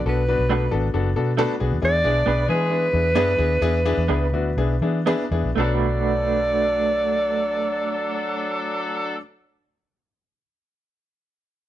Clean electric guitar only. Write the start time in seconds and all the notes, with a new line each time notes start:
0.49 A3 D4 F#4 B4
1.37 A3 D4 F#4 B4
2.26 B3 D4 G#4 B4
3.15 B3 D4 G#4 B4
4.08 B3 D4 G#4 B4
5.06 B3 D4 G#4 B4
5.56 A3 D4 F#4
5.60 B4